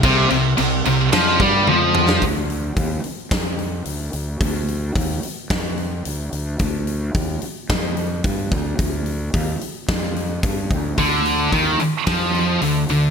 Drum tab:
CC |x-x-x-x-x-x-----|----------------|----------------|----------------|
HH |----------------|o-o-o-o-o-o-o-o-|o-o-o-o-o-o-o-o-|o-o-o-o-o-o-o-o-|
SD |--------o------o|--------o-------|--------o-------|--------o-------|
T1 |------------o---|----------------|----------------|----------------|
T2 |--------------o-|----------------|----------------|----------------|
BD |o---------o-----|o---o---o-------|o---o---o-------|o---o---o---o-o-|

CC |----------------|----------------|
HH |o-o-o-o-o-o-o-o-|o-o-o-o-o-o-o-o-|
SD |--------oo------|--------o-------|
T1 |----------------|----------------|
T2 |----------------|----------------|
BD |o---o---o---o-o-|o---o---o-------|